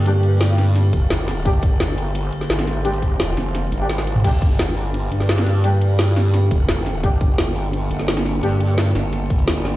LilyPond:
<<
  \new Staff \with { instrumentName = "Brass ensemble" } { \time 4/4 \key g \phrygian \tempo 4 = 172 <g d' g'>16 r2. r8. | <g d' g'>16 r2. r8. | <g d' g'>16 r2 r8 <g d' g'>16 r4 | <g d' g'>16 r2. r8. |
<g d' g'>16 r2. r8. | <g d' g'>16 r2. r8. | <g d' g'>16 r2. r8. | }
  \new Staff \with { instrumentName = "Synth drone" } { \time 4/4 \key g \phrygian << { g'1 | c''1~ | c''1 | g'1~ |
g'1 | d'1~ | d'1 | } \\ { <d bes>1~ | <d bes>1~ | <d bes>1 | <d bes>1~ |
<d bes>1~ | <d bes>1~ | <d bes>1 | } >> }
  \new Staff \with { instrumentName = "Wobble bass" } { \clef bass \time 4/4 \key g \phrygian g,2~ g,8 f,,8 g,,4 | g,,2~ g,,8 r8 aes,,4~ | aes,,4. f,,4 aes,,4. | g,,2~ g,,8 g,4.~ |
g,2~ g,8 f,,8 g,,4 | g,,2~ g,,8 g,,4. | g,4. g,,4. g,,4 | }
  \new DrumStaff \with { instrumentName = "Drums" } \drummode { \time 4/4 hh8 hh8 <hh sn>8 <hho sn>8 <hh sn>8 <hh bd>8 <hh sn>8 <hh sn>8 | <hh bd>8 <hh bd>8 <hh sn>8 hh8 hh8 hh16 sn16 <hh sn>16 sn16 <hh sn>8 | hh16 hh16 <hh bd>8 <hh sn>16 hh16 <hho sn>8 <hh sn>8 hh8 <hh sn>16 sn16 hh16 toml16 | <cymc hh bd>8 <hh bd>8 <hh sn>8 hho8 hh8 hh16 sn16 <hh sn>16 sn16 <hho sn>8 |
hh8 hh8 <hh sn>8 <hho sn>8 <hh sn>8 <hh bd>8 <hh sn>8 <hho sn>8 | <hh bd>8 <hh bd>8 <hh sn>8 hho8 hh8 hh16 sn16 <hh sn>16 sn16 <hho sn>8 | hh8 hh8 <hh sn>16 hh16 <hho sn>8 <hh sn>8 <hh bd>16 hh16 <hh sn>8 <hho sn>8 | }
>>